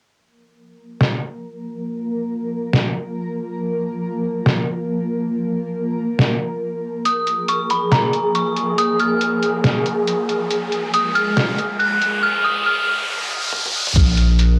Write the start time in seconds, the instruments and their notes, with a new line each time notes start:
0.15 ambient pad F3 A#3 A#4
1.01 snare
2.73 snare
4.46 snare
6.19 snare
7.05 ambient pad F3 A#3 A#4, synth texture G#4, synth bell D#6, closed hi-hat, riser
7.27 closed hi-hat
7.48 synth bell C#6, closed hi-hat
7.70 synth bell B5, closed hi-hat
7.92 synth bell A#5, snare, closed hi-hat
8.13 closed hi-hat
8.35 synth bell C#6, closed hi-hat
8.56 closed hi-hat
8.78 synth bell D#6, closed hi-hat
8.99 synth bell F6, closed hi-hat
9.21 closed hi-hat
9.43 closed hi-hat
9.64 snare, closed hi-hat
9.86 closed hi-hat
10.07 closed hi-hat
10.29 closed hi-hat
10.51 ambient pad G#3, closed hi-hat
10.72 closed hi-hat
10.94 synth bell D#6, closed hi-hat
11.15 synth bell F6, closed hi-hat
11.37 snare, closed hi-hat
11.58 closed hi-hat
11.80 synth bell F#6, closed hi-hat
12.02 closed hi-hat
12.23 synth bell F6
12.45 synth bell D#6
12.66 synth bell F6
13.53 high tom
13.66 high tom
13.87 mid tom
13.96 sub bass A#1, ambient pad F3 A#3 A#4, kick, closed hi-hat
14.17 closed hi-hat
14.39 closed hi-hat